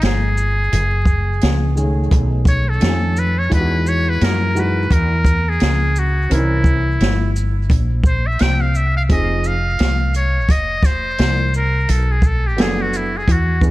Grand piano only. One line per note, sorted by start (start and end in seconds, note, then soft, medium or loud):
1.75 2.75 D#3 medium
1.75 1.84 G#3 medium
1.75 2.76 C#4 medium
1.75 2.76 G#4 medium
1.83 2.79 A3 medium
2.80 3.32 D#3 medium
2.80 3.32 A3 soft
2.80 3.32 C#4 medium
2.80 2.89 G4 medium
2.88 3.36 G#5 medium
3.50 4.49 E3 medium
3.50 4.50 G#3 medium
3.50 4.50 D#4 medium
3.50 3.59 F4 medium
3.59 4.54 F#4 medium
4.55 4.82 E3 medium
4.55 4.82 G#3 medium
4.55 4.82 D#4 medium
4.55 4.83 F#4 medium
6.29 6.37 D#3 medium
6.29 6.81 C4 medium
6.29 6.82 C#4 medium
6.29 6.82 A#4 medium
6.36 6.84 E3 medium
9.09 9.52 F3 medium
9.09 9.53 C4 medium
9.09 9.53 D#4 medium
9.09 9.53 G#4 medium
12.57 13.09 F#3 medium
12.57 13.09 B3 medium
12.57 13.09 D4 medium
12.57 13.10 A4 medium
13.61 13.71 E3 medium
13.61 13.71 B3 medium
13.61 13.71 D4 medium
13.61 13.71 G#4 medium